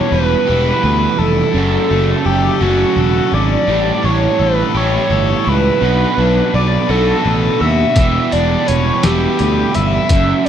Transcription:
Already playing: E2 B2 E3 G3 B3 D4 G4 C#5
0.11 E1 B4
0.46 E1 E2 B2 E3 G3 B3 E4 G4
0.83 D2 B4
1.18 F1 E4 A4
1.53 F#1 F#2 C#3 F#3 A3 C#4 F#4
1.90 F#1 A3
2.25 F#1 G4 A4
2.61 F#1 F#2 C#3 F#3 A3 C#4 F#4
2.96 E1 A4
3.31 G#1 C#4 D5
3.67 A1 A2 E3 G3 G4
4.03 A1 D4 C#5
4.39 A1 A4 B4
4.75 A1 E3 G3 E4 G4 C#5
4.79 A2
5.10 G1 A4
5.45 C#2 E4
5.49 B4
5.81 B1 B2 F#3 B3 D4 F#4
6.18 B1 D4
6.54 B1 B4 D5
6.89 B1 B2 F#3 B3 D4 F#4 A4
7.25 A1 B4
7.59 D#2 F#4 E5
7.95 E1 E2 B2 E3 G3, kick, closed hi-hat
7.99 B3 G4
8.32 E1 D4 D5, closed hi-hat
8.66 E1 B4 C#5, closed hi-hat
9.03 E1 E2 B2 E3 G3 B3 E4 G4, snare, closed hi-hat
9.39 D2 B4, closed hi-hat
9.74 G1 E4 E5, closed hi-hat
10.09 F#1 F#2 C#3 F#3 A3 C#4, kick, closed hi-hat
10.14 F#4
10.45 D5

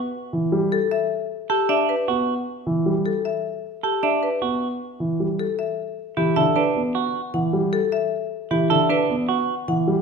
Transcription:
0.33 E3
0.52 G3
0.72 A4
0.91 E5
1.50 G4 A4
1.69 D4 E5
1.89 B4
2.08 B3 F#4
2.67 E3
2.86 G3
3.06 A4
3.25 E5
3.83 G4 A4
4.03 D4 E5
4.23 B4
4.42 B3 F#4
5.00 E3
5.20 G3
5.39 A4
5.59 E5
6.17 E3 E4 G4
6.36 D3 A4 E5
6.56 D4 B4
6.76 B3
6.95 F#4
7.34 E3 F#5
7.53 G3
7.73 A4
7.92 E5
8.51 E3 E4 G4
8.70 D3 A4 E5
8.89 D4 B4
9.10 B3
9.29 F#4
9.68 E3 F#5
9.88 G3

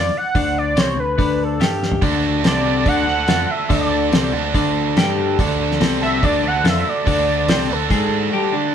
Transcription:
Already playing: F2 F3 F4 D5
0.12 muted picked electric bass stroke, muted clean electric guitar stroke
0.17 F#5
0.35 D2 D3 D4, kick, open hi-hat
0.58 D5
0.76 C2 C3 C4 C#5, snare, open hi-hat
0.96 D2 D3 B4
1.18 D2 D3 D4, kick, open hi-hat
1.43 A4
1.60 G2 G3 G4, snare, open hi-hat
1.83 snare
1.92 floor tom
2.02 D2 D3 D4 F#4 A4, kick, open hi-hat
2.43 C2 C3 C4, snare, open hi-hat
2.47 D5
2.65 D3 D4 F#4 A4
2.86 D2 D3 D4 F#5, kick, open hi-hat
3.06 D2 D3 F#5
3.28 F2 F3 F4, snare, open hi-hat
3.49 E5, muted picked electric bass stroke, muted clean electric guitar stroke
3.69 D2 D3 D4 F#4 A4 D5, kick, open hi-hat
4.12 C2 C3 C4, snare, open hi-hat
4.33 D2 D3 D4 F#4 A4
4.54 D2 D3 D4, kick, open hi-hat
4.97 G2 G3 G4, snare, open hi-hat
5.39 D2 D3 D4 F#4 A4, kick, open hi-hat
5.71 snare
5.80 C2 C3 C4, snare, open hi-hat
6.02 D3 D4 F#4 A4 E5
6.22 D2 D3 D4 D5, kick, open hi-hat
6.43 D2 D3
6.47 F#5
6.64 F2 F3 F4, snare, open hi-hat
6.68 E5
6.86 D5, muted clean electric guitar stroke
7.05 D2 D3 D4 F#4 A4, kick, open hi-hat
7.47 C2 C3 C4, snare, open hi-hat
7.69 D2 D3 D4 F#4 A4
7.90 G#2 G#3 G#4, kick, open hi-hat
8.33 G3 G4
8.52 D3 D4

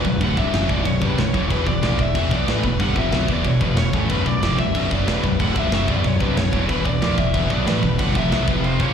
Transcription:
Already playing: B4
0.05 B0 B1 F#2, kick
0.21 D1 D2 A2 D3 F#5, kick, crash
0.37 C1 C2 G2 C3 E5, kick
0.53 F#1 F#2 C#3 F#3, snare, crash
0.69 B0 B1 F#2 B2 D5, kick
0.85 B0 B1 F#2 C#5, kick, crash
1.01 C1 C2 G2 C3 B4, kick
1.17 B0 B1 F#2 C#5, snare, crash
1.34 E1 E2 B2 E3, kick
1.50 E1 E2 B2 E3 B4, kick, crash
1.67 E1 E2 B2 D5, kick
1.82 A#1 A#2 F3 A#3, snare, crash
1.99 E1 E2 B2 E5, kick
2.15 E1 E2 B2 E3, kick, crash
2.31 B1 B2 F#3 B3 D5, kick
2.47 A1 A2 E3 A3 B4, snare, crash
2.64 E1 E2 B2, kick
2.79 G1 G2 D3 G3 F#5, kick, crash
2.96 F1 F2 C3 F3 E5, kick
3.12 B1 B2 F#3 B3, snare, crash
3.28 E1 E2 B2 E3 D5, kick
3.44 E1 E2 B2 C#5, kick, crash
3.60 F1 F2 C3 F3 B4, kick
3.76 E1 E2 B2 C#5, snare, crash
3.93 A1 A2 E3 A3, kick
4.10 B0 B1 F#2 B2 B4, kick, crash
4.26 B0 B1 F#2 D5, kick
4.42 F1 F2 C3 F3, snare, crash
4.58 B0 B1 F#2 E5, kick
4.75 B0 B1 F#2 B2, kick, crash
4.91 F#1 F#2 C#3 F#3 D5, kick
5.06 E1 E2 B2 E3 B4, snare, crash
5.23 B0 B1 F#2, kick
5.39 D1 D2 A2 D3 F#5, kick, crash
5.56 C1 C2 G2 C3 E5, kick
5.71 F#1 F#2 C#3 F#3 E5, snare, crash
5.88 B0 B1 F#2 B2 D5, kick
6.04 B0 B1 F#2 C#5, kick, crash
6.20 C1 C2 G2 C3 B4, kick
6.37 B0 B1 F#2 C#5, snare, crash
6.52 E1 E2 B2 E3, kick
6.68 E1 E2 B2 E3 B4, kick, crash
6.85 E1 E2 B2 D5, kick
7.01 A#1 A#2 F3 A#3, snare, crash
7.18 E1 E2 B2 E5, kick
7.34 E1 E2 B2 E3, kick, crash
7.49 B1 B2 F#3 B3 D5, kick
7.65 A1 A2 E3 A3 B4, snare, crash
7.83 E1 E2 B2, kick
7.98 G1 G2 D3 G3 F#5, kick, crash
8.14 F1 F2 C3 F3 E5, kick
8.32 B1 B2 F#3 B3, snare, crash
8.47 F1 F2 C3 F3 B4, kick
8.64 C5, crash
8.79 A#1 A#2 F3 A#3 C#5, kick

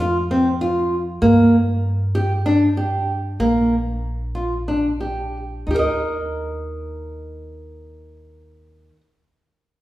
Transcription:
Already playing: F2
0.00 F4
0.31 C4
0.61 F4
1.22 G2 A#3
2.15 G4
2.46 D4
2.77 G4
3.40 A#1 A#3
4.35 F4
4.68 D4
5.00 G4
5.67 D#2 D#4
5.71 G4 A#4
5.79 D#5

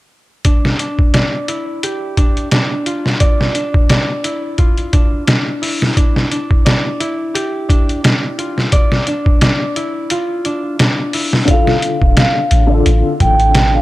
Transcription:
0.45 D4, kick, closed hi-hat
0.65 snare
0.79 D4, closed hi-hat
0.99 kick
1.14 D5, snare, closed hi-hat
1.48 E4, closed hi-hat
1.83 G4, closed hi-hat
2.17 D4, kick, closed hi-hat
2.37 closed hi-hat
2.51 D4, snare, closed hi-hat
2.86 F4, closed hi-hat
3.06 snare
3.20 D5, kick, closed hi-hat
3.41 snare
3.55 D4, closed hi-hat
3.74 kick
3.89 D5, snare, closed hi-hat
4.24 E4, closed hi-hat
4.58 F4, kick, closed hi-hat
4.78 closed hi-hat
4.93 D4, kick, closed hi-hat
5.27 D4, snare, closed hi-hat
5.62 E4, open hi-hat
5.82 snare
5.97 D4, kick, closed hi-hat
6.16 snare
6.31 D4, closed hi-hat
6.51 kick
6.65 D5, snare, closed hi-hat
7.00 E4, closed hi-hat
7.34 G4, closed hi-hat
7.69 D4, kick, closed hi-hat
7.89 closed hi-hat
8.04 D4, snare, closed hi-hat
8.38 F4, closed hi-hat
8.58 snare
8.72 D5, kick, closed hi-hat
8.92 snare
9.07 D4, closed hi-hat
9.26 kick
9.41 D5, snare, closed hi-hat
9.76 E4, closed hi-hat
10.10 F4, closed hi-hat
10.45 D4, closed hi-hat
10.79 D4, snare, closed hi-hat
11.13 E4, open hi-hat
11.33 snare
11.45 D3 D4, kick, closed hi-hat
11.50 F4 A4 F5
11.67 snare
11.82 closed hi-hat
12.02 D1, kick
12.17 F5, snare, closed hi-hat
12.51 A1, closed hi-hat
12.67 D3 D4
12.72 F4 A4
12.86 A1, closed hi-hat
13.20 A1 G5, kick, closed hi-hat
13.40 closed hi-hat
13.55 snare, closed hi-hat
13.75 F5

